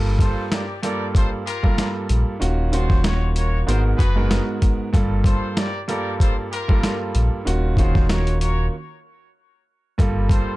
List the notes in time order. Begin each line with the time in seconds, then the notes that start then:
Already playing: G1 G2 G3 A#3 F4 A4
0.19 F4 A4 C5, kick, closed hi-hat
0.52 G4 A#4 D5, snare, closed hi-hat
0.82 G2 G3 A#3 F4 G4 A4 A#4 D5, closed hi-hat
1.15 F4 A4 C5, kick, closed hi-hat
1.46 F4 G4 A#4, closed hi-hat
1.63 G2 G3 A#3 F4 A4, kick
1.78 snare, closed hi-hat
2.09 A#1, closed hi-hat
2.40 D#1 D#3 A#3 C#4 F4 F#4, closed hi-hat
2.72 D#3 A#3 C#4 F4 F#4 G#4 C5, closed hi-hat
2.90 kick, snare
3.03 F#4 A#4 C#5, snare, closed hi-hat
3.36 F#4 A#4 C#5, closed hi-hat
3.67 G#1 G#2 G#3 B3 F4 F#4 G#4 A#4 C5, closed hi-hat
3.97 F#1 F#4 G#4 B4, kick, closed hi-hat
4.16 G#2 G#3 B3 F#4 A#4
4.31 snare, closed hi-hat
4.62 kick, closed hi-hat
4.93 G1 G2 G3 A#3 F4 A4, kick, closed hi-hat
5.24 F4 A4 C5, kick, closed hi-hat
5.57 G4 A#4 D5, snare, closed hi-hat
5.88 G2 G3 A#3 F4 G4 A4 A#4 D5, closed hi-hat
6.20 F4 A4 C5, kick, closed hi-hat
6.51 F4 G4 A#4, closed hi-hat
6.68 G2 G3 A#3 F4 A4, kick
6.83 snare, closed hi-hat
7.15 A#1, closed hi-hat
7.45 D#1 D#3 A#3 C#4 F4 F#4, closed hi-hat
7.77 D#3 A#3 C#4 F4 F#4 G#4 C5, kick, closed hi-hat
7.95 kick, snare
8.09 F#4 A#4 C#5, snare, closed hi-hat
8.27 closed hi-hat
8.41 F#4 A#4 C#5, closed hi-hat
9.98 G1 G2 G3 A#3 F4 A4, kick, closed hi-hat
10.29 F4 A4 C5, kick, closed hi-hat